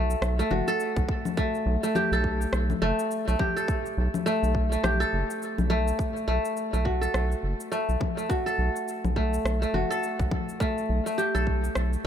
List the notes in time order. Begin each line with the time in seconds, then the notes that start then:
Already playing: B1 A3 F#4 A4
0.10 shaker
0.22 B1, cross-stick, shaker
0.39 A3, shaker
0.51 F#1 F#4, low conga
0.68 A4, shaker
0.80 shaker
0.97 B1, kick, shaker
1.09 kick
1.25 low conga, shaker
1.37 A3, kick, shaker
1.55 shaker
1.66 B1
1.83 A3, shaker
1.95 G4, low conga, shaker
2.12 B1 A4, shaker
2.24 kick
2.42 shaker
2.53 B1, cross-stick, shaker
2.70 low conga, shaker
2.82 F#1 A3
2.99 shaker
3.11 shaker
3.28 B1 A3, shaker
3.39 G4, kick, low conga
3.57 A4, shaker
3.68 kick, shaker
3.86 shaker
3.98 B1
4.14 low conga, shaker
4.26 A3, shaker
4.43 B1, shaker
4.55 kick
4.72 A3, shaker
4.83 B1 G4, cross-stick, low conga, shaker
5.00 A4, shaker
5.13 F#1
5.30 shaker
5.42 shaker
5.58 B1, low conga, shaker
5.70 A3
5.88 shaker
5.99 kick, shaker
6.17 shaker
6.28 B1 A3
6.45 shaker
6.57 shaker
6.73 B1 A3, shaker
6.85 F#4, kick
7.01 A4, shaker
7.14 B1, cross-stick, shaker
7.32 shaker
7.43 F#1
7.60 shaker
7.72 A3, shaker
7.89 B1, shaker
8.01 kick, low conga
8.17 A3, shaker
8.29 F#4, kick, shaker
8.46 A4, shaker
8.58 B1
8.76 shaker
8.88 shaker
9.05 B1, low conga, shaker
9.16 A3, kick
9.34 shaker
9.45 B1, cross-stick, shaker
9.62 A3, shaker
9.74 F#1 F#4, low conga
9.90 A4, shaker
10.03 shaker
10.20 B1, kick, shaker
10.31 kick, low conga
10.49 shaker
10.60 A3, kick, shaker
10.78 shaker
10.89 B1
11.06 A3, shaker
11.18 G4, shaker
11.35 B1 A4, shaker
11.47 kick
11.64 shaker
11.75 B1, cross-stick, shaker
11.93 shaker